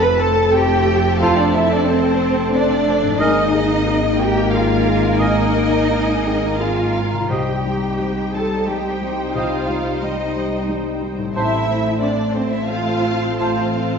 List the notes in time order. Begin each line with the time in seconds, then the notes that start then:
Already playing: F1 F2 A3 C4 A4 C5 A5 C6
0.01 B4 B5
0.18 C4 A4 C5 A5
0.52 C4 G4 A4 C5 G5
0.87 C4 A4 C5
1.20 F2 F4 A4 C5 F5 A5
1.38 D4 D5
1.54 C4 E4 A4 C5 E5
1.71 D4 D5
1.87 C4 A4 C5
2.21 C4 A4 C5
2.53 C4 D4 A4 C5 D5
2.87 C4 A4 C5
3.02 G#2
3.07 G#3
3.11 D#4
3.16 G#1 G#2 A#3 A#4 D#5 G#5
3.20 A#3 D#4 A#4 G#5
3.53 G#3 G#4 A#4
3.86 G#3 G#4 A#4
4.19 G#3 D#4 G4 A#4 G5
4.52 G#3 F4 G#4 A#4 F5
4.86 G#3 G#4 A#4
5.19 G#2 D#4 A#4 D#5 G#5
5.56 G#3 G#4 A#4
5.90 G#3 G#4 A#4 G#5
6.25 G#3 G#4 A#4 G5
6.58 G#3 F4 G#4 A#4 F5 G#5
6.94 G#3 A#4 A#5
7.13 C3
7.17 G3
7.22 D#4
7.26 C2 C5 G5
7.30 C2 G3 D#4 G4 C5 D#5 G5
7.65 G3 D#4 C5
7.99 G3 D#4 C5
8.34 G3 D#4 A4 C5 A5
8.67 G3 D#4 G4 C5 G5
9.02 G3 D#4 C5
9.35 C2 F4 C5 D#5 F5 G5
9.69 G3 D#4 C5
10.03 G3 D#4 C5 D#5
10.36 G3 D#4 C5
10.69 G3 D#4 C5
11.01 G3 D#4 C5
11.18 A2
11.22 A3
11.27 C4
11.31 E4 C5 E5
11.35 A1 A3 C4 C5 A5
11.68 A3 C4 C5
12.01 A3 C4 D4 C5 D5
12.34 A3 C4 C5
12.51 E4 E5
12.68 A3 C4 F4 C5 F5
13.04 A3 C4 C5
13.38 A1 F4 C5 F5 A5
13.77 A3 C4 C5